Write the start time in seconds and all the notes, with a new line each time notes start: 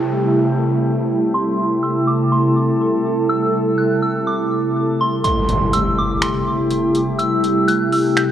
Already playing: C3 G3 A3 E4 G4 F#6, downlifter
0.12 E6
0.37 G6
1.34 A4 C6
1.83 E6
2.07 D6
2.32 C6
3.29 E6
3.78 F#6
4.02 E6
4.27 D6
5.01 C6
5.24 C3 G3 A3 E4 G4 C6, closed hi-hat, impact
5.49 closed hi-hat
5.73 E6, closed hi-hat
5.98 D6
6.22 C6, finger snap, closed hi-hat
6.71 closed hi-hat
6.95 closed hi-hat
7.19 E6, closed hi-hat
7.44 closed hi-hat
7.68 F#6, closed hi-hat
7.93 E6, open hi-hat
8.17 G6, finger snap, closed hi-hat